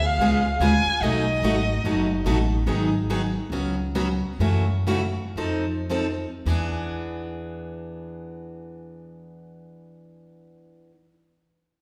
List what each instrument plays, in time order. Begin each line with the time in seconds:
Already playing: upright bass D2
0.05 violin F5
0.18 upright bass C#2, steel-string acoustic guitar C#3 G#3 B3 F4 G#4
0.59 upright bass D2, steel-string acoustic guitar C#3 G#3 B3 F4 G#4, violin G#5
0.86 muted upright bass stroke
1.01 upright bass B1, steel-string acoustic guitar B2 F#3 A3 D#4 F#4, violin D#5
1.42 upright bass G#1, steel-string acoustic guitar B2 F#3 A3 D#4 F#4
1.84 upright bass F#1, steel-string acoustic guitar B2 F#3 A3 D#4 F#4
2.25 upright bass A1, steel-string acoustic guitar B2 F#3 A3 D#4 F#4
2.67 upright bass G#1, steel-string acoustic guitar D#3 F#3 B3 D#4 G#4
3.10 steel-string acoustic guitar D#3 F#3 B3 D#4 G#4
3.50 upright bass C#2, steel-string acoustic guitar C#3 F#3 B3 C#4 F#4
3.95 steel-string acoustic guitar C#3 F#3 B3 C#4 F#4
4.39 upright bass F#2, steel-string acoustic guitar C#3 E3 A3 C#4 F#4
4.87 steel-string acoustic guitar C#3 E3 A3 C#4 F#4
5.36 upright bass F2, steel-string acoustic guitar F3 C4 D#4 A4
5.90 steel-string acoustic guitar F3 C4 D#4 A4
6.46 upright bass E2, steel-string acoustic guitar E3 B3 D4
6.50 steel-string acoustic guitar G#4